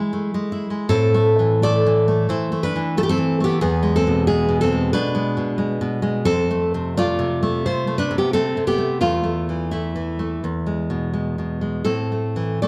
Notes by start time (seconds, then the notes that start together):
Already playing: G#3 E4
0.13 A3
0.34 G#3
0.52 E4
0.70 G#3
0.89 A2 C4 A4
1.14 A3
1.39 E3
1.62 A3 A4 D5
1.86 E3
2.08 A3
2.29 E3 E4 C5
2.52 A3
2.63 D4 B4
2.76 E3
2.97 A3 A4
3.03 G4
3.09 C4 A4
3.18 E3
3.40 A3 G4
3.45 B3
3.61 E2 B3 G#4
3.83 G#3
3.96 C4 A4
4.07 B2
4.27 G#3 B3 G#4
4.49 B2
4.61 C4 A4
4.72 G#3
4.93 B2 D4 B4
5.15 G#3
5.37 B2
5.58 G#3
5.81 B2
6.02 G#3
6.25 F2 C4 A4
6.51 A3
6.74 C3
6.97 A3 F4 D5
7.19 C3
7.43 A3
7.66 C3 F4 C5
7.87 A3
7.98 D4 B4
8.11 C3
8.18 B3 G4
8.33 A3 C4 A4
8.57 C3
8.67 B3 G4
8.78 A3
9.01 E2 A3 F4
9.23 A3
9.49 E3
9.71 A3 E4
9.96 E3
10.19 A3
10.44 E2
10.66 G#3
10.90 B2
11.14 G#3
11.38 B2
11.61 G#3
11.85 A2 C4 A4
12.12 A3
12.36 E3
12.62 A3 A4 D5